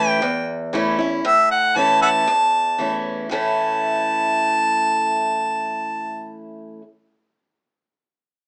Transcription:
0, 0, Header, 1, 3, 480
1, 0, Start_track
1, 0, Key_signature, 3, "major"
1, 0, Tempo, 513259
1, 1171, Time_signature, 4, 2, 24, 8
1, 7926, End_track
2, 0, Start_track
2, 0, Title_t, "Harmonica"
2, 0, Program_c, 0, 22
2, 0, Note_on_c, 0, 81, 114
2, 88, Note_off_c, 0, 81, 0
2, 88, Note_on_c, 0, 79, 114
2, 650, Note_off_c, 0, 79, 0
2, 1185, Note_on_c, 0, 76, 83
2, 1402, Note_off_c, 0, 76, 0
2, 1415, Note_on_c, 0, 78, 84
2, 1657, Note_on_c, 0, 81, 95
2, 1671, Note_off_c, 0, 78, 0
2, 1884, Note_off_c, 0, 81, 0
2, 1890, Note_on_c, 0, 76, 64
2, 1890, Note_on_c, 0, 78, 64
2, 1890, Note_on_c, 0, 81, 91
2, 1952, Note_off_c, 0, 76, 0
2, 1965, Note_off_c, 0, 78, 0
2, 2814, Note_off_c, 0, 81, 0
2, 3094, Note_on_c, 0, 81, 85
2, 5974, Note_off_c, 0, 81, 0
2, 7926, End_track
3, 0, Start_track
3, 0, Title_t, "Steel-string acoustic guitar"
3, 0, Program_c, 1, 25
3, 0, Note_on_c, 1, 45, 80
3, 0, Note_on_c, 1, 52, 88
3, 0, Note_on_c, 1, 57, 97
3, 0, Note_on_c, 1, 61, 90
3, 0, Note_on_c, 1, 64, 92
3, 161, Note_off_c, 1, 45, 0
3, 180, Note_off_c, 1, 52, 0
3, 186, Note_off_c, 1, 57, 0
3, 188, Note_off_c, 1, 61, 0
3, 190, Note_off_c, 1, 64, 0
3, 206, Note_on_c, 1, 40, 90
3, 682, Note_on_c, 1, 52, 66
3, 690, Note_on_c, 1, 57, 77
3, 699, Note_on_c, 1, 61, 77
3, 702, Note_on_c, 1, 64, 86
3, 911, Note_off_c, 1, 64, 0
3, 917, Note_off_c, 1, 52, 0
3, 921, Note_off_c, 1, 57, 0
3, 923, Note_on_c, 1, 64, 59
3, 926, Note_off_c, 1, 61, 0
3, 940, Note_on_c, 1, 61, 49
3, 1121, Note_off_c, 1, 40, 0
3, 1157, Note_off_c, 1, 64, 0
3, 1166, Note_off_c, 1, 61, 0
3, 1166, Note_on_c, 1, 45, 80
3, 1645, Note_on_c, 1, 52, 57
3, 1657, Note_on_c, 1, 57, 67
3, 1661, Note_on_c, 1, 61, 58
3, 1666, Note_on_c, 1, 64, 60
3, 2081, Note_off_c, 1, 45, 0
3, 2104, Note_off_c, 1, 52, 0
3, 2111, Note_off_c, 1, 57, 0
3, 2112, Note_off_c, 1, 61, 0
3, 2115, Note_off_c, 1, 64, 0
3, 2128, Note_on_c, 1, 40, 86
3, 2604, Note_on_c, 1, 52, 46
3, 2614, Note_on_c, 1, 57, 51
3, 2622, Note_on_c, 1, 61, 51
3, 2629, Note_on_c, 1, 64, 53
3, 3042, Note_off_c, 1, 40, 0
3, 3064, Note_off_c, 1, 52, 0
3, 3070, Note_off_c, 1, 57, 0
3, 3073, Note_off_c, 1, 61, 0
3, 3077, Note_off_c, 1, 64, 0
3, 3081, Note_on_c, 1, 45, 63
3, 3096, Note_on_c, 1, 52, 75
3, 3103, Note_on_c, 1, 57, 80
3, 3108, Note_on_c, 1, 61, 77
3, 3114, Note_on_c, 1, 64, 77
3, 6354, Note_off_c, 1, 45, 0
3, 6369, Note_off_c, 1, 52, 0
3, 6376, Note_off_c, 1, 57, 0
3, 6382, Note_off_c, 1, 61, 0
3, 6387, Note_off_c, 1, 64, 0
3, 7926, End_track
0, 0, End_of_file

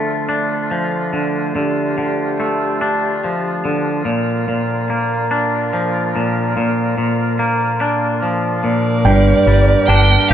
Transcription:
0, 0, Header, 1, 6, 480
1, 0, Start_track
1, 0, Tempo, 834492
1, 886, Time_signature, 6, 3, 24, 8
1, 5946, End_track
2, 0, Start_track
2, 0, Title_t, "Felt piano"
2, 0, Program_c, 0, 0
2, 5205, Note_on_c, 0, 79, 78
2, 5675, Note_off_c, 0, 79, 0
2, 5683, Note_on_c, 0, 79, 60
2, 5946, Note_off_c, 0, 79, 0
2, 5946, End_track
3, 0, Start_track
3, 0, Title_t, "Violin"
3, 0, Program_c, 1, 40
3, 4970, Note_on_c, 1, 74, 65
3, 5672, Note_on_c, 1, 79, 83
3, 5680, Note_off_c, 1, 74, 0
3, 5913, Note_on_c, 1, 77, 87
3, 5922, Note_off_c, 1, 79, 0
3, 5946, Note_off_c, 1, 77, 0
3, 5946, End_track
4, 0, Start_track
4, 0, Title_t, "Woodwind section"
4, 0, Program_c, 2, 71
4, 0, Note_on_c, 2, 50, 39
4, 0, Note_on_c, 2, 57, 39
4, 0, Note_on_c, 2, 65, 36
4, 0, Note_on_c, 2, 69, 47
4, 861, Note_off_c, 2, 69, 0
4, 888, Note_on_c, 2, 67, 45
4, 2227, Note_off_c, 2, 57, 0
4, 2227, Note_off_c, 2, 67, 0
4, 2325, Note_on_c, 2, 70, 51
4, 2330, Note_on_c, 2, 58, 43
4, 5181, Note_off_c, 2, 65, 0
4, 5182, Note_off_c, 2, 70, 0
4, 5183, Note_off_c, 2, 50, 0
4, 5184, Note_off_c, 2, 58, 0
4, 5212, Note_on_c, 2, 50, 65
4, 5212, Note_on_c, 2, 67, 55
4, 5214, Note_on_c, 2, 70, 66
4, 5215, Note_on_c, 2, 58, 54
4, 5946, Note_off_c, 2, 50, 0
4, 5946, Note_off_c, 2, 58, 0
4, 5946, Note_off_c, 2, 67, 0
4, 5946, Note_off_c, 2, 70, 0
4, 5946, End_track
5, 0, Start_track
5, 0, Title_t, "Clean electric guitar"
5, 0, Program_c, 3, 27
5, 0, Note_on_c, 3, 50, 34
5, 0, Note_on_c, 3, 53, 36
5, 0, Note_on_c, 3, 57, 37
5, 0, Note_on_c, 3, 65, 39
5, 163, Note_off_c, 3, 65, 0
5, 165, Note_on_c, 3, 62, 45
5, 408, Note_off_c, 3, 53, 0
5, 410, Note_on_c, 3, 53, 42
5, 643, Note_off_c, 3, 50, 0
5, 650, Note_on_c, 3, 50, 36
5, 888, Note_off_c, 3, 50, 0
5, 895, Note_on_c, 3, 50, 45
5, 1127, Note_off_c, 3, 57, 0
5, 1131, Note_off_c, 3, 50, 0
5, 1138, Note_on_c, 3, 50, 39
5, 1379, Note_on_c, 3, 57, 40
5, 1615, Note_off_c, 3, 62, 0
5, 1618, Note_on_c, 3, 62, 50
5, 1863, Note_off_c, 3, 53, 0
5, 1866, Note_on_c, 3, 53, 40
5, 2092, Note_off_c, 3, 50, 0
5, 2099, Note_on_c, 3, 50, 40
5, 2329, Note_off_c, 3, 50, 0
5, 2331, Note_on_c, 3, 46, 46
5, 2336, Note_off_c, 3, 57, 0
5, 2571, Note_off_c, 3, 46, 0
5, 2577, Note_on_c, 3, 46, 41
5, 2818, Note_on_c, 3, 58, 40
5, 3052, Note_off_c, 3, 62, 0
5, 3054, Note_on_c, 3, 62, 50
5, 3295, Note_off_c, 3, 53, 0
5, 3298, Note_on_c, 3, 53, 45
5, 3535, Note_off_c, 3, 46, 0
5, 3541, Note_on_c, 3, 46, 43
5, 3771, Note_off_c, 3, 46, 0
5, 3778, Note_on_c, 3, 46, 47
5, 4006, Note_off_c, 3, 46, 0
5, 4013, Note_on_c, 3, 46, 38
5, 4014, Note_off_c, 3, 58, 0
5, 4252, Note_off_c, 3, 62, 0
5, 4252, Note_on_c, 3, 58, 43
5, 4492, Note_on_c, 3, 62, 52
5, 4493, Note_off_c, 3, 53, 0
5, 4731, Note_on_c, 3, 53, 47
5, 4962, Note_off_c, 3, 46, 0
5, 4969, Note_on_c, 3, 46, 42
5, 5208, Note_off_c, 3, 46, 0
5, 5208, Note_off_c, 3, 53, 0
5, 5208, Note_off_c, 3, 58, 0
5, 5208, Note_off_c, 3, 62, 0
5, 5210, Note_on_c, 3, 43, 61
5, 5450, Note_on_c, 3, 55, 51
5, 5690, Note_on_c, 3, 62, 62
5, 5929, Note_on_c, 3, 67, 66
5, 5946, Note_off_c, 3, 43, 0
5, 5946, Note_off_c, 3, 55, 0
5, 5946, Note_off_c, 3, 62, 0
5, 5946, Note_off_c, 3, 67, 0
5, 5946, End_track
6, 0, Start_track
6, 0, Title_t, "Fingered electric bass"
6, 0, Program_c, 4, 33
6, 5203, Note_on_c, 4, 31, 75
6, 5359, Note_off_c, 4, 31, 0
6, 5443, Note_on_c, 4, 31, 76
6, 5598, Note_off_c, 4, 31, 0
6, 5685, Note_on_c, 4, 31, 68
6, 5839, Note_off_c, 4, 31, 0
6, 5925, Note_on_c, 4, 31, 77
6, 5946, Note_off_c, 4, 31, 0
6, 5946, End_track
0, 0, End_of_file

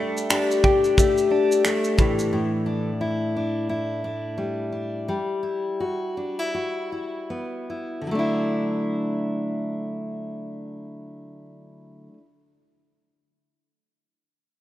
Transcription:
0, 0, Header, 1, 4, 480
1, 0, Start_track
1, 0, Key_signature, 2, "major"
1, 0, Tempo, 679502
1, 1644, Time_signature, 4, 2, 24, 8
1, 3094, Tempo, 719424
1, 4534, Tempo, 769231
1, 5494, Tempo, 794702
1, 9438, End_track
2, 0, Start_track
2, 0, Title_t, "Steel-string acoustic guitar"
2, 0, Program_c, 0, 25
2, 0, Note_on_c, 0, 55, 62
2, 0, Note_on_c, 0, 62, 56
2, 215, Note_on_c, 0, 67, 66
2, 454, Note_off_c, 0, 62, 0
2, 457, Note_on_c, 0, 62, 54
2, 684, Note_off_c, 0, 67, 0
2, 686, Note_on_c, 0, 67, 58
2, 918, Note_off_c, 0, 62, 0
2, 920, Note_on_c, 0, 62, 48
2, 1169, Note_on_c, 0, 57, 50
2, 1395, Note_on_c, 0, 45, 61
2, 1635, Note_off_c, 0, 45, 0
2, 1644, Note_on_c, 0, 45, 65
2, 1665, Note_off_c, 0, 55, 0
2, 1665, Note_off_c, 0, 67, 0
2, 1876, Note_off_c, 0, 62, 0
2, 1879, Note_on_c, 0, 62, 53
2, 2124, Note_on_c, 0, 64, 59
2, 2361, Note_off_c, 0, 62, 0
2, 2376, Note_on_c, 0, 62, 48
2, 2607, Note_off_c, 0, 64, 0
2, 2609, Note_on_c, 0, 64, 55
2, 2846, Note_off_c, 0, 62, 0
2, 2855, Note_on_c, 0, 62, 48
2, 3088, Note_off_c, 0, 57, 0
2, 3091, Note_on_c, 0, 55, 51
2, 3315, Note_off_c, 0, 62, 0
2, 3323, Note_on_c, 0, 62, 44
2, 3563, Note_off_c, 0, 45, 0
2, 3564, Note_off_c, 0, 55, 0
2, 3564, Note_on_c, 0, 55, 66
2, 3618, Note_off_c, 0, 62, 0
2, 3794, Note_off_c, 0, 64, 0
2, 3794, Note_on_c, 0, 64, 49
2, 4044, Note_on_c, 0, 66, 60
2, 4287, Note_off_c, 0, 64, 0
2, 4289, Note_on_c, 0, 62, 50
2, 4434, Note_off_c, 0, 62, 0
2, 4434, Note_on_c, 0, 64, 39
2, 4536, Note_off_c, 0, 66, 0
2, 4538, Note_on_c, 0, 66, 49
2, 4766, Note_off_c, 0, 64, 0
2, 4773, Note_on_c, 0, 64, 43
2, 5009, Note_on_c, 0, 59, 46
2, 5255, Note_off_c, 0, 64, 0
2, 5258, Note_on_c, 0, 64, 45
2, 5455, Note_on_c, 0, 50, 55
2, 5487, Note_off_c, 0, 55, 0
2, 5489, Note_on_c, 0, 54, 59
2, 5513, Note_off_c, 0, 59, 0
2, 5516, Note_on_c, 0, 57, 68
2, 5536, Note_off_c, 0, 64, 0
2, 5538, Note_on_c, 0, 62, 66
2, 5559, Note_off_c, 0, 66, 0
2, 5561, Note_on_c, 0, 64, 66
2, 7910, Note_off_c, 0, 50, 0
2, 7943, Note_off_c, 0, 54, 0
2, 7969, Note_off_c, 0, 57, 0
2, 7991, Note_off_c, 0, 62, 0
2, 8015, Note_off_c, 0, 64, 0
2, 9438, End_track
3, 0, Start_track
3, 0, Title_t, "Clean electric guitar"
3, 0, Program_c, 1, 27
3, 0, Note_on_c, 1, 57, 55
3, 0, Note_on_c, 1, 62, 56
3, 211, Note_off_c, 1, 62, 0
3, 213, Note_on_c, 1, 62, 50
3, 453, Note_on_c, 1, 67, 53
3, 691, Note_off_c, 1, 57, 0
3, 694, Note_on_c, 1, 57, 53
3, 926, Note_off_c, 1, 62, 0
3, 929, Note_on_c, 1, 62, 54
3, 1163, Note_off_c, 1, 57, 0
3, 1166, Note_on_c, 1, 57, 55
3, 1406, Note_on_c, 1, 52, 65
3, 2055, Note_off_c, 1, 52, 0
3, 2055, Note_off_c, 1, 57, 0
3, 2055, Note_off_c, 1, 62, 0
3, 2055, Note_off_c, 1, 67, 0
3, 9438, End_track
4, 0, Start_track
4, 0, Title_t, "Drums"
4, 122, Note_on_c, 9, 82, 44
4, 192, Note_off_c, 9, 82, 0
4, 213, Note_on_c, 9, 82, 54
4, 215, Note_on_c, 9, 26, 93
4, 283, Note_off_c, 9, 82, 0
4, 286, Note_off_c, 9, 26, 0
4, 361, Note_on_c, 9, 82, 42
4, 431, Note_off_c, 9, 82, 0
4, 452, Note_on_c, 9, 36, 71
4, 522, Note_off_c, 9, 36, 0
4, 595, Note_on_c, 9, 82, 42
4, 666, Note_off_c, 9, 82, 0
4, 691, Note_on_c, 9, 36, 77
4, 697, Note_on_c, 9, 82, 66
4, 762, Note_off_c, 9, 36, 0
4, 768, Note_off_c, 9, 82, 0
4, 832, Note_on_c, 9, 82, 45
4, 903, Note_off_c, 9, 82, 0
4, 1072, Note_on_c, 9, 82, 49
4, 1142, Note_off_c, 9, 82, 0
4, 1163, Note_on_c, 9, 26, 88
4, 1166, Note_on_c, 9, 82, 62
4, 1234, Note_off_c, 9, 26, 0
4, 1237, Note_off_c, 9, 82, 0
4, 1301, Note_on_c, 9, 82, 43
4, 1372, Note_off_c, 9, 82, 0
4, 1400, Note_on_c, 9, 82, 41
4, 1403, Note_on_c, 9, 36, 80
4, 1471, Note_off_c, 9, 82, 0
4, 1473, Note_off_c, 9, 36, 0
4, 1547, Note_on_c, 9, 82, 46
4, 1618, Note_off_c, 9, 82, 0
4, 9438, End_track
0, 0, End_of_file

